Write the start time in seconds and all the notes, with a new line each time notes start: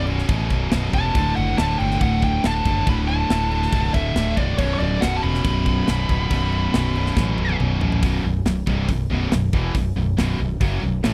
Already playing: B0 B1 F#2 B2
0.07 B1 F#2 B2, crash
0.19 snare
0.29 A1 B1 F#2 B2, kick, crash
0.50 B0, kick, crash
0.71 B0 B1 F#2 B2, snare, crash
0.93 E1 B1 F#2 B2 A5, kick, crash
1.15 D1 D2 A2 D3, kick, crash
1.36 F#1 F#5, crash
1.58 D1 D2 A2 D3 A5, snare, crash
1.79 G1 D2 A2 D3 G5, crash
1.91 snare
2.01 D1 D2 A2 D3 F#5, kick, crash
2.22 G5, kick, crash
2.44 D1 D2 A2 D3 A5, snare, crash
2.65 F#1 D2 A2 D3, kick, crash
2.87 D1 D2 A2 D3 B5, kick, crash
3.08 A5, crash
3.30 D1 D2 A2 D3, snare, crash
3.51 D2 A2 D3, crash
3.62 snare
3.72 B0 D2 A2 D3, kick, crash
3.94 D1 E5, kick, crash
4.15 D1 D2 A2 D3, snare, crash
4.37 B0 D2 A2 D3 D5, kick, crash
4.58 B0 B1 F#2 B2 C#5, kick, crash
4.74 C#5
4.79 D1 D5, crash
5.01 B0 B1 F#2 B2 F#5, snare, crash
5.16 A5
5.23 E1 B1 F#2 B2 B5, crash
5.34 snare
5.44 B0 B1 F#2 B2, kick, crash
5.66 kick, crash
5.87 B0 B1 F#2 B2, snare, crash
6.09 D1 B1 F#2 B2, kick, crash
6.30 B0 B1 F#2 B2, kick, crash
6.52 crash
6.74 B0 B1 F#2 B2, snare, crash
6.95 B1 F#2 B2, crash
7.06 snare
7.16 A1 B1 F#2 B2, kick, snare
7.38 B0, high tom
7.49 high tom
7.60 B0 B1 F#2 B2, mid tom
7.81 A1 B1 F#2 B2, floor tom
7.92 floor tom
8.03 B0 B1 F#2 B2, kick, open hi-hat
8.24 B0 B1 F#2
8.45 B0 B1 F#2, snare, open hi-hat
8.67 C1 C2 G2 C3, kick
8.89 B0 B1 F#2, kick, open hi-hat
9.11 B0 B1 F#2 B2
9.32 B0 B1 F#2, snare, open hi-hat
9.53 E1 E2 B2 E3, kick
9.75 B0 B1 F#2, kick, open hi-hat
9.96 B0 B1 F#2
10.18 B0 B1 F#2 B2, snare, open hi-hat
10.39 B0 B1 F#2
10.61 F#1 F#2 C#3 F#3, kick, open hi-hat
10.83 B0 B1 F#2
11.03 A1 A2 E3 A3, snare, open hi-hat